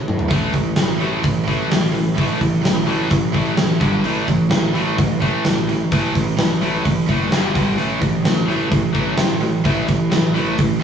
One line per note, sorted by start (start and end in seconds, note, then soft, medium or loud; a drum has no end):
0.08 0.29 A2 medium
0.08 mid tom medium
0.19 floor tom medium
0.28 0.50 A1 loud
0.28 0.52 A2 medium
0.28 0.52 E3 medium
0.28 0.52 A3 medium
0.28 kick loud
0.28 open hi-hat medium
0.53 0.73 A1 medium
0.53 0.75 A2 medium
0.53 0.75 E3 medium
0.53 kick medium
0.53 open hi-hat medium
0.76 0.97 A1 medium
0.76 0.96 A2 medium
0.76 0.97 E3 medium
0.76 snare loud
0.76 open hi-hat medium
0.98 1.20 A1 loud
0.98 1.19 A2 medium
0.98 1.20 E3 medium
0.98 1.22 A3 medium
0.98 open hi-hat medium
1.21 1.44 A1 medium
1.21 1.43 A2 medium
1.21 1.44 E3 medium
1.21 kick loud
1.21 open hi-hat medium
1.44 1.67 A2 medium
1.44 1.67 E3 medium
1.44 1.68 A3 loud
1.44 kick medium
1.48 1.67 A1 medium
1.48 1.70 A2 medium
1.48 open hi-hat medium
1.68 2.10 A1 medium
1.68 1.90 A2 medium
1.68 1.90 E3 medium
1.68 snare loud
1.68 open hi-hat medium
1.92 2.13 A2 medium
1.92 2.13 E3 medium
1.92 open hi-hat medium
2.14 2.37 A1 loud
2.14 2.36 A2 medium
2.14 2.36 E3 medium
2.14 2.38 A3 loud
2.14 kick loud
2.14 open hi-hat medium
2.37 2.60 A2 medium
2.37 2.60 E3 medium
2.41 2.61 A1 medium
2.41 kick medium
2.41 open hi-hat medium
2.62 2.83 A1 medium
2.62 2.84 A2 medium
2.62 2.84 E3 medium
2.62 snare loud
2.62 open hi-hat medium
2.86 3.07 A1 medium
2.86 3.09 A2 medium
2.86 3.09 E3 medium
2.86 3.09 A3 medium
2.86 open hi-hat medium
3.10 3.31 A1 loud
3.10 3.31 A2 medium
3.10 3.32 E3 medium
3.10 kick loud
3.10 open hi-hat medium
3.32 3.54 A1 medium
3.32 3.54 A2 medium
3.32 3.55 E3 loud
3.32 3.56 A3 loud
3.32 kick medium
3.32 open hi-hat medium
3.56 3.76 A1 medium
3.56 3.78 A2 medium
3.56 3.78 E3 medium
3.56 snare loud
3.56 open hi-hat medium
3.80 4.01 G1 medium
3.80 4.03 G2 medium
3.80 4.03 D3 loud
3.80 4.03 G3 loud
3.80 kick loud
3.80 open hi-hat medium
4.03 4.23 A1 loud
4.03 4.24 A2 medium
4.03 4.25 E3 medium
4.03 4.26 A3 loud
4.03 open hi-hat medium
4.26 4.48 A1 loud
4.26 4.48 A2 medium
4.26 4.48 E3 medium
4.26 kick medium
4.26 open hi-hat medium
4.50 4.70 A1 medium
4.50 4.71 A2 medium
4.50 4.72 E3 medium
4.50 snare loud
4.50 open hi-hat medium
4.73 4.94 A1 medium
4.73 4.96 A2 medium
4.73 4.96 E3 medium
4.73 4.96 A3 medium
4.73 open hi-hat medium
4.98 5.18 A1 medium
4.98 5.19 A2 medium
4.98 5.19 E3 medium
4.98 kick loud
4.98 open hi-hat medium
5.20 5.41 A1 medium
5.20 5.43 A2 medium
5.20 5.43 E3 loud
5.20 5.43 A3 loud
5.20 kick medium
5.20 open hi-hat medium
5.44 5.83 A1 medium
5.44 5.66 A2 medium
5.44 5.66 E3 medium
5.44 snare loud
5.44 open hi-hat medium
5.69 5.89 A2 medium
5.69 5.90 E3 medium
5.69 open hi-hat medium
5.92 6.11 A1 loud
5.92 6.14 A2 medium
5.92 6.14 E3 medium
5.92 6.14 A3 medium
5.92 kick loud
5.92 open hi-hat medium
6.15 6.35 A1 medium
6.15 6.36 A2 medium
6.15 6.36 E3 medium
6.15 kick medium
6.15 open hi-hat medium
6.37 6.57 A1 medium
6.37 6.59 A2 medium
6.37 6.58 E3 medium
6.37 snare loud
6.37 open hi-hat medium
6.60 6.80 A1 medium
6.60 6.83 A2 medium
6.60 6.83 E3 medium
6.60 6.84 A3 medium
6.60 open hi-hat medium
6.84 7.05 A1 medium
6.84 7.05 A2 medium
6.84 7.05 E3 medium
6.84 kick loud
6.84 open hi-hat medium
7.06 7.28 F#1 medium
7.06 7.29 A2 medium
7.06 7.29 E3 medium
7.06 7.30 A3 loud
7.06 kick medium
7.06 open hi-hat medium
7.29 7.50 G1 medium
7.29 7.52 G2 medium
7.29 7.53 D3 medium
7.29 7.53 G3 loud
7.29 snare loud
7.29 open hi-hat medium
7.53 7.74 G1 medium
7.53 7.76 G2 medium
7.53 7.76 D3 loud
7.53 7.76 G3 medium
7.53 kick loud
7.53 open hi-hat medium
7.77 7.97 A1 loud
7.77 7.99 A2 medium
7.77 8.00 E3 loud
7.77 8.00 A3 loud
7.77 open hi-hat medium
8.01 8.21 A1 medium
8.01 8.22 A2 medium
8.01 8.22 E3 medium
8.01 kick loud
8.01 open hi-hat medium
8.25 8.44 A1 medium
8.25 8.46 A2 medium
8.25 8.46 E3 medium
8.25 snare loud
8.25 open hi-hat medium
8.48 8.67 A1 loud
8.48 8.70 A2 medium
8.48 8.70 E3 loud
8.48 8.71 A3 medium
8.48 open hi-hat medium
8.71 8.91 A1 medium
8.71 8.92 A2 medium
8.71 8.92 E3 medium
8.71 kick loud
8.71 open hi-hat medium
8.92 9.14 A1 medium
8.92 9.17 A2 medium
8.92 9.17 E3 loud
8.92 9.15 A3 medium
8.92 kick medium
8.92 open hi-hat medium
8.97 9.17 A3 medium
9.17 9.57 A1 medium
9.17 9.39 A2 medium
9.17 9.39 E3 medium
9.17 snare loud
9.17 open hi-hat medium
9.41 9.62 A2 medium
9.41 9.62 E3 medium
9.41 open hi-hat medium
9.64 9.84 A1 loud
9.64 9.86 A2 medium
9.64 9.87 E3 medium
9.64 9.87 A3 medium
9.64 kick loud
9.64 open hi-hat medium
9.88 10.08 A1 medium
9.88 10.09 A2 medium
9.88 10.09 E3 medium
9.88 kick loud
9.88 open hi-hat medium
10.11 10.32 A1 medium
10.11 10.32 A2 medium
10.11 10.32 E3 medium
10.11 snare loud
10.11 open hi-hat medium
10.34 10.55 A1 medium
10.34 10.56 A2 medium
10.34 10.57 E3 medium
10.34 10.57 A3 medium
10.34 open hi-hat medium
10.58 10.78 A1 loud
10.58 10.78 A2 medium
10.58 10.79 E3 loud
10.58 kick loud
10.58 open hi-hat medium
10.79 10.83 A2 medium